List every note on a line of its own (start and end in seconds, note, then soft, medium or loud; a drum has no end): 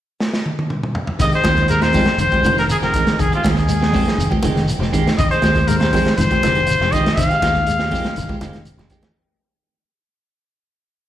0.20 snare medium
0.33 snare medium
0.46 high tom medium
0.59 high tom medium
0.70 mid tom medium
0.83 mid tom medium
0.95 floor tom medium
1.07 floor tom medium
1.19 1.32 F1 medium
1.19 1.42 D#3 medium
1.19 1.32 D#3 medium
1.19 1.32 G#3 medium
1.19 1.31 G4 medium
1.19 1.32 D#5 loud
1.19 muted clean electric guitar stroke medium
1.19 kick medium
1.19 snare soft
1.19 closed hi-hat medium
1.19 shekere medium
1.32 1.43 G#3 soft
1.32 1.43 C4 soft
1.32 1.44 G4 medium
1.32 1.68 C5 loud
1.32 closed hi-hat soft
1.32 shekere soft
1.44 1.94 D#2 medium
1.44 1.59 D#3 soft
1.44 1.60 C4 medium
1.44 1.60 G4 medium
1.44 muted clean electric guitar stroke medium
1.44 kick medium
1.44 snare medium
1.44 closed hi-hat soft
1.44 high conga medium
1.44 shekere medium
1.57 kick medium
1.57 snare soft
1.57 closed hi-hat soft
1.57 high conga medium
1.57 shekere soft
1.68 1.92 G#3 medium
1.68 1.84 A#4 medium
1.68 closed hi-hat medium
1.68 shekere medium
1.82 1.93 G#3 soft
1.82 1.93 C4 medium
1.82 1.93 G4 soft
1.82 2.19 C5 medium
1.82 snare medium
1.82 closed hi-hat soft
1.82 shekere soft
1.93 2.06 F2 medium
1.93 2.09 D#3 medium
1.93 2.17 G3 medium
1.93 2.10 G#3 medium
1.93 2.10 C4 medium
1.93 2.10 G4 medium
1.93 kick medium
1.93 open hi-hat medium
1.93 high conga medium
1.93 low conga medium
1.93 shekere medium
2.06 snare medium
2.06 closed hi-hat soft
2.06 shekere soft
2.18 2.31 F1 medium
2.18 2.42 D#3 medium
2.18 2.55 C5 medium
2.18 closed hi-hat medium
2.18 shekere medium
2.31 2.44 G#3 soft
2.31 2.44 C4 soft
2.31 2.44 G4 medium
2.31 muted fingered electric bass stroke soft
2.31 kick medium
2.31 closed hi-hat soft
2.31 high conga medium
2.31 shekere soft
2.43 2.80 F1 medium
2.43 2.56 D3 medium
2.43 2.60 D#3 medium
2.43 2.60 C4 medium
2.43 2.60 G4 medium
2.43 muted clean electric guitar stroke medium
2.43 closed hi-hat medium
2.43 high conga medium
2.43 shekere medium
2.57 2.80 D#3 medium
2.57 2.64 A#4 medium
2.57 snare soft
2.57 closed hi-hat soft
2.57 shekere soft
2.69 2.77 G#4 medium
2.69 closed hi-hat medium
2.69 shekere medium
2.82 2.94 F1 medium
2.82 2.93 F3 medium
2.82 2.94 G#3 soft
2.82 2.94 C4 soft
2.82 2.94 G4 soft
2.82 3.21 A#4 medium
2.82 snare soft
2.82 shekere soft
2.94 3.16 D#3 medium
2.94 3.10 D#3 medium
2.94 3.10 G#3 medium
2.94 3.10 C4 medium
2.94 muted clean electric guitar stroke medium
2.94 kick medium
2.94 closed hi-hat medium
2.94 low conga medium
2.94 shekere medium
3.07 muted fingered electric bass stroke soft
3.07 snare medium
3.07 closed hi-hat soft
3.07 shekere soft
3.19 3.32 F1 medium
3.19 3.41 D#3 loud
3.19 3.32 G#4 medium
3.19 kick medium
3.19 closed hi-hat medium
3.19 shekere medium
3.32 3.43 G#3 soft
3.32 3.44 C4 medium
3.32 3.46 F4 medium
3.32 3.44 G4 soft
3.32 closed hi-hat soft
3.32 shekere soft
3.43 3.94 D#2 medium
3.43 3.59 D#3 medium
3.43 3.60 G#3 medium
3.43 3.60 C4 medium
3.43 3.60 G4 medium
3.43 kick medium
3.43 snare medium
3.43 closed hi-hat medium
3.43 high conga medium
3.43 shekere medium
3.57 4.28 G#4 medium
3.57 kick medium
3.57 snare soft
3.57 closed hi-hat soft
3.57 shekere soft
3.69 3.91 G#3 medium
3.69 closed hi-hat medium
3.69 shekere medium
3.81 3.93 G#3 soft
3.81 3.93 C4 soft
3.81 3.94 G4 soft
3.81 snare medium
3.81 shekere soft
3.92 4.06 F2 medium
3.92 4.09 D#3 medium
3.92 4.16 G3 medium
3.92 4.09 G#3 medium
3.92 4.09 C4 medium
3.92 4.10 G4 medium
3.92 kick medium
3.92 open hi-hat medium
3.92 high conga medium
3.92 low conga medium
3.92 shekere medium
4.08 snare medium
4.08 closed hi-hat soft
4.08 shekere soft
4.17 4.31 F1 medium
4.17 4.40 D#3 medium
4.17 closed hi-hat medium
4.17 shekere medium
4.30 4.43 C4 soft
4.30 4.43 G4 medium
4.30 kick medium
4.30 high conga medium
4.30 shekere soft
4.43 4.78 F1 medium
4.43 4.55 D3 medium
4.43 4.59 D#3 medium
4.43 4.59 G#3 medium
4.43 4.59 C4 medium
4.43 4.59 G4 medium
4.43 closed hi-hat soft
4.43 high conga medium
4.43 shekere medium
4.55 4.78 D#3 medium
4.55 snare soft
4.55 closed hi-hat soft
4.55 shekere soft
4.68 closed hi-hat medium
4.68 shekere medium
4.79 4.92 F1 medium
4.79 4.92 F3 medium
4.79 4.92 G#3 soft
4.79 4.92 C4 soft
4.79 4.92 G4 medium
4.79 snare soft
4.79 shekere soft
4.92 5.08 D#3 medium
4.92 5.16 D#3 medium
4.92 5.09 G#3 medium
4.92 5.09 C4 medium
4.92 5.09 G4 medium
4.92 kick medium
4.92 closed hi-hat medium
4.92 low conga medium
4.92 shekere medium
5.06 muted fingered electric bass stroke soft
5.06 snare medium
5.06 closed hi-hat soft
5.06 shekere soft
5.18 5.31 F1 medium
5.18 5.41 D#3 medium
5.18 5.30 D#5 loud
5.18 kick medium
5.18 closed hi-hat medium
5.18 shekere medium
5.31 5.42 G#3 soft
5.31 5.43 C4 soft
5.31 5.42 G4 soft
5.31 5.69 C5 medium
5.31 closed hi-hat soft
5.31 shekere soft
5.42 5.93 D#2 medium
5.42 5.58 D#3 medium
5.42 5.59 G#3 medium
5.42 5.59 C4 medium
5.42 5.59 G4 medium
5.42 kick medium
5.42 snare medium
5.42 closed hi-hat medium
5.42 high conga medium
5.42 shekere medium
5.55 kick medium
5.55 snare soft
5.55 closed hi-hat soft
5.55 high conga medium
5.55 shekere soft
5.68 5.91 G#3 medium
5.68 5.78 A#4 medium
5.68 closed hi-hat medium
5.68 shekere medium
5.79 5.93 G#3 soft
5.79 5.94 C4 soft
5.79 5.93 G4 soft
5.79 6.14 C5 medium
5.79 snare medium
5.79 closed hi-hat soft
5.79 low conga medium
5.83 shekere soft
5.93 6.05 F2 medium
5.93 6.09 D#3 medium
5.93 6.16 G3 medium
5.93 6.09 G#3 medium
5.93 6.09 C4 medium
5.93 6.09 G4 medium
5.93 kick medium
5.93 open hi-hat medium
5.93 high conga medium
5.93 low conga medium
5.93 shekere medium
6.06 snare medium
6.06 closed hi-hat soft
6.06 shekere soft
6.16 6.30 F1 medium
6.16 6.41 D#3 medium
6.16 6.94 C5 medium
6.16 closed hi-hat medium
6.16 high conga medium
6.21 shekere medium
6.31 6.43 G#3 soft
6.31 6.44 C4 soft
6.31 6.43 G4 medium
6.31 muted fingered electric bass stroke soft
6.31 kick medium
6.31 closed hi-hat soft
6.31 high conga medium
6.31 shekere soft
6.43 6.79 F1 medium
6.43 6.55 D3 medium
6.43 6.59 G#3 medium
6.43 6.60 C4 medium
6.43 6.60 G4 medium
6.43 muted clean electric guitar stroke medium
6.43 snare soft
6.43 closed hi-hat medium
6.43 high conga medium
6.43 shekere medium
6.55 6.79 D#3 medium
6.55 closed hi-hat soft
6.59 shekere soft
6.67 closed hi-hat medium
6.71 shekere medium
6.81 6.92 F1 medium
6.81 6.92 F3 medium
6.81 6.93 G#3 soft
6.81 6.94 C4 soft
6.81 6.93 G4 medium
6.81 snare soft
6.81 shekere soft
6.92 7.15 D#3 medium
6.92 7.09 D#3 medium
6.92 7.09 G#3 medium
6.92 7.09 C4 medium
6.92 7.09 G4 medium
6.92 7.14 D#5 medium
6.92 kick medium
6.92 closed hi-hat medium
6.92 low conga medium
6.92 shekere medium
7.05 muted fingered electric bass stroke soft
7.05 snare medium
7.05 closed hi-hat soft
7.05 shekere soft
7.15 7.29 F1 medium
7.15 7.40 D#3 loud
7.15 8.61 F5 loud
7.15 kick medium
7.15 snare soft
7.15 closed hi-hat medium
7.21 shekere medium
7.30 7.42 G#3 soft
7.30 7.42 C4 soft
7.30 7.42 G4 medium
7.30 closed hi-hat soft
7.30 shekere soft
7.42 7.92 D#2 medium
7.42 7.58 D#3 soft
7.42 7.58 G#3 medium
7.42 7.58 C4 medium
7.42 7.58 G4 medium
7.42 kick medium
7.42 snare medium
7.42 closed hi-hat soft
7.42 high conga medium
7.47 shekere medium
7.55 kick medium
7.55 snare soft
7.55 closed hi-hat soft
7.55 high conga medium
7.55 shekere soft
7.66 7.89 G#3 medium
7.66 closed hi-hat medium
7.66 shekere medium
7.79 7.90 G#3 soft
7.79 7.91 C4 medium
7.79 7.91 G4 medium
7.79 snare medium
7.79 shekere soft
7.91 8.04 F2 medium
7.91 8.07 D#3 medium
7.91 8.14 G3 medium
7.91 8.07 G#3 medium
7.91 8.07 C4 medium
7.91 8.07 G4 medium
7.91 kick medium
7.91 open hi-hat medium
7.91 high conga medium
7.91 low conga medium
7.91 shekere medium
8.04 snare medium
8.04 closed hi-hat soft
8.04 shekere soft
8.16 8.28 F1 medium
8.16 8.39 D#3 medium
8.16 closed hi-hat medium
8.16 shekere medium
8.29 8.40 G#3 soft
8.29 8.40 G4 medium
8.29 kick medium
8.29 high conga medium
8.29 shekere soft
8.41 8.77 F1 medium
8.41 8.53 D3 medium
8.41 8.57 D#3 medium
8.41 8.57 G#3 medium
8.41 8.57 C4 medium
8.41 8.57 G4 medium
8.41 snare soft
8.41 closed hi-hat soft
8.41 high conga medium
8.41 shekere medium
8.53 8.77 D#3 medium
8.53 snare soft
8.53 closed hi-hat soft
8.53 high conga medium
8.53 shekere soft
8.65 closed hi-hat medium
8.65 shekere medium
8.78 8.90 F1 medium
8.78 8.90 F3 medium
8.78 8.90 G#3 soft
8.78 8.91 C4 medium
8.78 8.91 G4 soft
8.78 snare soft
8.78 low conga medium
8.78 shekere soft
8.90 9.06 D#3 medium
8.90 9.14 D#3 medium
8.90 9.06 G#3 medium
8.90 9.07 G4 medium
8.90 kick medium
8.90 closed hi-hat medium
8.90 low conga medium
8.90 shekere medium
9.02 muted fingered electric bass stroke soft
9.02 snare medium
9.02 closed hi-hat soft
9.02 low conga medium
9.02 shekere soft